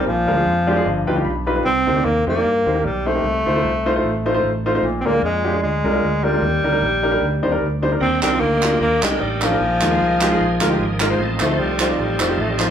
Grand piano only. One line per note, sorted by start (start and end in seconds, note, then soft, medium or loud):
0.05 0.63 A#2 medium
0.27 0.34 G#3 medium
0.27 0.34 D4 medium
0.27 0.34 F4 medium
0.27 0.34 A#4 medium
0.36 0.50 G#3 medium
0.36 0.50 D4 medium
0.36 0.50 F4 medium
0.36 0.50 G#4 medium
0.67 0.73 G#3 medium
0.67 0.74 D4 medium
0.67 0.74 F4 medium
0.67 0.74 G4 medium
0.67 0.84 D5 medium
0.76 0.85 G#3 medium
0.76 0.85 D4 medium
0.76 0.85 F4 medium
0.76 0.85 G#4 medium
0.85 1.43 G2 medium
0.85 1.06 D#5 medium
1.07 1.13 G3 medium
1.07 1.14 D#4 medium
1.07 1.14 F4 medium
1.07 1.14 B4 medium
1.07 1.24 G5 medium
1.16 1.29 G3 medium
1.16 1.29 D#4 medium
1.16 1.29 F4 medium
1.16 1.29 G4 medium
1.25 1.45 B5 medium
1.46 1.53 G3 medium
1.46 1.53 D#4 medium
1.46 1.53 F4 medium
1.46 1.53 B4 medium
1.46 1.64 B5 medium
1.56 1.65 G3 medium
1.56 1.65 D#4 medium
1.56 1.65 F4 medium
1.56 1.65 B4 medium
1.65 2.23 C3 medium
1.87 1.93 A#3 medium
1.87 1.93 D#4 medium
1.87 1.93 G4 medium
1.87 1.93 C5 medium
1.96 2.09 A#3 medium
1.96 2.09 D#4 medium
1.96 2.09 G4 medium
1.96 2.09 D5 medium
2.27 2.33 A#3 medium
2.27 2.33 D#4 medium
2.27 2.33 G4 medium
2.27 2.33 C5 medium
2.35 2.49 A#3 medium
2.35 2.49 D#4 medium
2.35 2.49 G4 medium
2.35 2.49 D5 medium
2.66 2.72 A#3 medium
2.66 2.73 D#4 medium
2.66 2.73 G4 medium
2.66 2.73 C5 medium
2.74 2.88 A#3 medium
2.74 2.88 D#4 medium
2.74 2.88 G4 medium
2.74 2.89 A#4 medium
3.06 3.12 A#3 medium
3.06 3.12 D#4 medium
3.06 3.12 G4 medium
3.06 3.12 C5 medium
3.15 3.24 A#3 medium
3.15 3.24 D#4 medium
3.15 3.24 G4 medium
3.15 3.24 C5 medium
3.24 3.82 C3 medium
3.46 3.52 A3 medium
3.46 3.52 D#4 medium
3.46 3.52 F4 medium
3.46 3.52 C5 medium
3.55 3.68 A3 medium
3.55 3.68 D#4 medium
3.55 3.68 F4 medium
3.55 3.69 C5 medium
3.86 3.92 A3 medium
3.86 3.92 D#4 medium
3.86 3.92 F4 medium
3.86 3.92 C5 medium
3.95 4.08 A3 medium
3.95 4.08 D#4 medium
3.95 4.08 F4 medium
3.95 4.09 C5 medium
4.26 4.32 A3 medium
4.26 4.32 D#4 medium
4.26 4.32 F4 medium
4.26 4.32 C5 medium
4.34 4.48 A3 medium
4.34 4.48 D#4 medium
4.34 4.48 F4 medium
4.34 4.48 C5 medium
4.66 4.72 A3 medium
4.66 4.72 D#4 medium
4.66 4.72 F4 medium
4.66 4.72 C5 medium
4.75 4.83 A3 medium
4.75 4.83 D#4 medium
4.75 4.83 F4 medium
4.75 4.83 C5 medium
4.84 5.41 A#2 medium
5.05 5.11 G#3 medium
5.05 5.11 D4 medium
5.05 5.11 F4 medium
5.05 5.12 A#4 medium
5.14 5.27 G#3 medium
5.14 5.27 D4 medium
5.14 5.27 F4 medium
5.14 5.27 A#4 medium
5.44 5.51 G#3 medium
5.44 5.51 D4 medium
5.44 5.51 F4 medium
5.44 5.51 G4 medium
5.53 5.67 G#3 medium
5.53 5.67 D4 medium
5.53 5.67 F4 medium
5.53 5.67 G#4 medium
5.84 5.90 G#3 medium
5.84 5.91 D4 medium
5.84 5.91 F4 medium
5.84 5.91 A#4 medium
5.93 6.06 G#3 medium
5.93 6.06 D4 medium
5.93 6.06 F4 medium
5.93 6.07 A#4 medium
6.23 6.30 G#3 medium
6.23 6.30 D4 medium
6.23 6.30 F4 medium
6.23 6.30 A#4 medium
6.33 6.42 G#3 medium
6.33 6.42 D4 medium
6.33 6.42 F4 medium
6.33 6.42 A#4 medium
6.42 7.00 D#3 medium
6.64 6.70 G3 medium
6.64 6.70 D4 medium
6.64 6.70 D#4 medium
6.64 6.70 A#4 medium
6.72 6.86 G3 medium
6.72 6.86 D4 medium
6.72 6.86 D#4 medium
6.72 6.86 A#4 medium
7.03 7.10 G3 medium
7.03 7.10 D4 medium
7.03 7.10 D#4 medium
7.03 7.10 A#4 medium
7.12 7.25 G3 medium
7.12 7.25 D4 medium
7.12 7.25 D#4 medium
7.12 7.25 A#4 medium
7.43 7.49 G3 medium
7.43 7.49 D4 medium
7.43 7.49 D#4 medium
7.43 7.49 C5 medium
7.51 7.65 G3 medium
7.51 7.65 D4 medium
7.51 7.65 D#4 medium
7.51 7.65 A#4 medium
7.82 7.89 G3 medium
7.82 7.89 D4 medium
7.82 7.89 D#4 medium
7.82 7.89 C5 medium
7.91 8.05 G3 medium
7.91 8.05 D4 medium
7.91 8.05 D#4 medium
7.91 8.05 A#4 medium
8.01 8.58 D#3 medium
8.22 8.29 G3 medium
8.22 8.29 D4 medium
8.22 8.29 D#4 medium
8.22 8.29 A#4 medium
8.32 8.45 G3 medium
8.32 8.45 D4 medium
8.32 8.45 D#4 medium
8.32 8.45 F4 medium
8.63 8.69 G3 medium
8.63 8.69 D4 medium
8.63 8.69 D#4 medium
8.63 8.69 F4 medium
8.72 8.85 G3 medium
8.72 8.85 D4 medium
8.72 8.85 D#4 medium
8.72 8.85 F4 medium
9.03 9.09 G3 medium
9.03 9.09 D4 medium
9.03 9.09 D#4 medium
9.03 9.09 G4 medium
9.11 9.24 G3 medium
9.11 9.24 D4 medium
9.11 9.24 D#4 medium
9.11 9.24 A#4 medium
9.42 9.48 G3 medium
9.42 9.48 D4 medium
9.42 9.48 D#4 medium
9.42 9.48 A#4 medium
9.51 9.60 G3 medium
9.51 9.60 D4 medium
9.51 9.60 D#4 medium
9.51 9.60 A#4 medium
9.61 10.18 A#2 medium
9.82 9.88 G#3 medium
9.82 9.88 D#4 medium
9.82 9.88 F4 medium
9.82 9.88 A#4 medium
9.91 10.04 G#3 medium
9.91 10.04 D#4 medium
9.91 10.04 F4 medium
9.91 10.04 G#4 medium
10.21 10.27 G#3 medium
10.21 10.27 D#4 medium
10.21 10.27 F4 medium
10.21 10.28 G4 loud
10.30 10.43 G#3 medium
10.30 10.43 D#4 medium
10.30 10.43 F4 medium
10.30 10.43 G#4 medium
10.61 10.67 G#3 medium
10.61 10.67 D#4 medium
10.61 10.67 F4 medium
10.61 10.67 A#4 medium
10.70 10.83 G#3 medium
10.70 10.83 D#4 medium
10.70 10.83 F4 medium
10.70 10.83 G4 medium
11.00 11.07 G#3 medium
11.00 11.07 D#4 medium
11.00 11.07 F4 medium
11.00 11.07 A#4 medium
11.10 11.18 G#3 medium
11.10 11.19 D#4 medium
11.10 11.19 F4 medium
11.10 11.19 C5 medium
11.19 11.76 A2 medium
11.40 11.46 A3 medium
11.40 11.47 D#4 medium
11.40 11.47 F4 medium
11.40 11.47 C5 medium
11.50 11.63 A3 medium
11.50 11.63 D#4 medium
11.50 11.63 F4 medium
11.50 11.63 C5 medium
11.80 11.86 A3 medium
11.80 11.86 D#4 medium
11.80 11.86 F4 medium
11.80 11.86 C5 medium
11.89 12.02 A3 medium
11.89 12.02 D#4 medium
11.89 12.02 F4 medium
11.89 12.02 D5 medium
12.19 12.26 A3 medium
12.19 12.26 D#4 medium
12.19 12.26 F4 medium
12.19 12.26 C5 medium
12.29 12.42 A3 medium
12.29 12.42 D#4 medium
12.29 12.42 F4 medium
12.29 12.42 G4 medium
12.59 12.65 A3 medium
12.59 12.65 D#4 medium
12.59 12.65 F4 medium
12.59 12.66 C5 medium